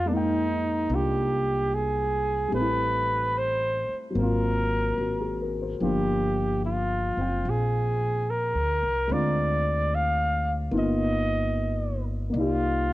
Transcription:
0.00 0.86 F2 medium
0.06 2.51 G#3 soft
0.06 0.89 A#3 soft
0.06 0.15 D4 soft
0.13 2.55 D#4 soft
0.13 0.96 D#4 medium
0.13 2.57 G5 medium
0.90 2.49 C2 medium
0.90 2.53 A#3 soft
0.90 2.54 D4 soft
0.94 2.55 F4 soft
0.94 1.76 G4 medium
1.74 2.54 G#4 medium
2.48 4.14 G3 soft
2.48 4.16 A3 soft
2.52 3.85 A1 medium
2.52 4.16 C4 soft
2.52 3.39 B4 medium
2.60 4.20 E4 medium
3.38 4.00 C5 medium
3.89 muted upright bass stroke soft
4.10 5.78 F#3 soft
4.14 4.94 G#1 medium
4.14 5.80 A#3 soft
4.14 5.82 C4 soft
4.19 5.81 F4 medium
4.19 5.51 A#4 medium
4.97 5.76 G#1 medium
4.97 5.38 F#4 soft
5.20 5.55 G#4 soft
5.42 5.67 A#4 soft
5.62 5.90 C5 soft
5.80 7.14 G1 medium
5.80 9.09 F3 soft
5.80 9.10 A#3 soft
5.80 9.09 D4 soft
5.80 7.18 F4 soft
5.80 6.60 G4 medium
6.65 7.51 F4 medium
7.17 7.43 F#1 medium
7.17 9.08 C4 soft
7.17 9.10 F4 soft
7.17 9.11 G5 soft
7.45 8.51 A#1 medium
7.50 8.32 G#4 medium
8.30 9.14 A#4 medium
8.55 8.80 D2 medium
8.83 9.08 C2 medium
9.07 10.67 D2 medium
9.07 10.70 G#3 soft
9.07 10.71 C4 soft
9.07 10.72 D4 soft
9.12 10.72 F4 medium
9.12 9.96 D5 medium
9.95 10.56 F5 medium
10.71 12.30 G1 medium
10.71 12.28 A#3 medium
10.71 12.34 B3 medium
10.71 12.34 D#4 soft
10.71 12.35 F4 medium
10.78 12.06 D#5 medium
12.30 12.93 A#3 soft
12.30 12.93 D5 soft
12.34 12.93 C2 medium
12.34 12.93 D#4 soft
12.40 12.93 F4 medium
12.40 12.93 G4 medium

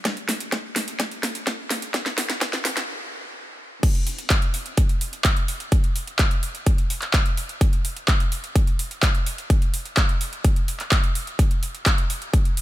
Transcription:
0.05 kick loud
0.05 snare medium
0.05 closed hi-hat medium
0.17 closed hi-hat soft
0.29 snare medium
0.29 open hi-hat loud
0.40 closed hi-hat medium
0.52 kick loud
0.52 snare medium
0.52 closed hi-hat medium
0.76 snare medium
0.76 open hi-hat loud
0.88 closed hi-hat soft
1.00 kick loud
1.00 snare medium
1.00 closed hi-hat medium
1.11 closed hi-hat soft
1.23 snare medium
1.23 open hi-hat loud
1.35 closed hi-hat medium
1.47 kick loud
1.47 snare medium
1.47 closed hi-hat medium
1.70 snare medium
1.70 open hi-hat loud
1.82 closed hi-hat soft
1.94 kick loud
1.94 snare medium
1.94 closed hi-hat medium
2.06 snare medium
2.06 closed hi-hat soft
2.18 snare medium
2.18 open hi-hat loud
2.30 snare medium
2.30 closed hi-hat soft
2.41 kick loud
2.41 snare medium
2.41 closed hi-hat medium
2.53 snare medium
2.65 snare loud
2.65 open hi-hat loud
2.77 snare medium
2.77 closed hi-hat soft
3.83 kick loud
3.83 closed hi-hat medium
3.83 crash loud
3.95 closed hi-hat soft
4.07 open hi-hat loud
4.18 closed hi-hat soft
4.30 kick loud
4.30 clap loud
4.30 closed hi-hat medium
4.42 closed hi-hat soft
4.54 open hi-hat loud
4.66 closed hi-hat soft
4.77 kick loud
4.77 closed hi-hat loud
4.89 closed hi-hat soft
5.01 open hi-hat loud
5.13 closed hi-hat soft
5.24 kick loud
5.24 clap loud
5.24 closed hi-hat medium
5.37 closed hi-hat soft
5.48 open hi-hat loud
5.60 closed hi-hat soft
5.72 kick loud
5.72 closed hi-hat medium
5.84 closed hi-hat soft
5.96 open hi-hat loud
6.07 closed hi-hat soft
6.19 kick loud
6.19 clap loud
6.19 closed hi-hat loud
6.31 closed hi-hat soft
6.43 open hi-hat loud
6.55 closed hi-hat soft
6.66 kick loud
6.66 closed hi-hat loud
6.78 closed hi-hat soft
6.90 open hi-hat loud
7.02 clap soft
7.02 closed hi-hat soft
7.13 kick loud
7.13 clap loud
7.13 closed hi-hat medium
7.26 closed hi-hat soft
7.37 open hi-hat loud
7.49 closed hi-hat soft
7.61 kick loud
7.61 closed hi-hat medium
7.73 closed hi-hat soft
7.85 open hi-hat loud
7.97 closed hi-hat soft
8.08 kick loud
8.08 clap loud
8.08 closed hi-hat medium
8.20 closed hi-hat soft
8.32 open hi-hat loud
8.44 closed hi-hat soft
8.56 kick loud
8.56 closed hi-hat medium
8.67 closed hi-hat soft
8.79 open hi-hat loud
8.91 closed hi-hat soft
9.03 kick loud
9.03 clap loud
9.03 closed hi-hat medium
9.15 closed hi-hat soft
9.26 open hi-hat loud
9.38 closed hi-hat soft
9.50 kick loud
9.50 closed hi-hat medium
9.62 closed hi-hat soft
9.74 open hi-hat loud
9.86 closed hi-hat soft
9.97 kick loud
9.97 clap loud
9.97 closed hi-hat medium
10.09 closed hi-hat soft
10.21 open hi-hat loud
10.33 closed hi-hat soft
10.44 kick loud
10.44 closed hi-hat loud
10.56 closed hi-hat soft
10.68 open hi-hat loud
10.80 clap soft
10.80 closed hi-hat soft
10.91 kick loud
10.91 clap loud
10.91 closed hi-hat medium
11.04 closed hi-hat soft
11.15 open hi-hat loud
11.27 closed hi-hat soft
11.39 kick loud
11.39 closed hi-hat medium
11.51 closed hi-hat soft
11.63 open hi-hat loud
11.75 closed hi-hat soft
11.86 kick loud
11.86 clap loud
11.86 closed hi-hat medium
11.98 closed hi-hat soft
12.10 open hi-hat loud
12.22 closed hi-hat soft
12.34 kick loud
12.34 closed hi-hat medium
12.45 closed hi-hat soft
12.57 open hi-hat loud

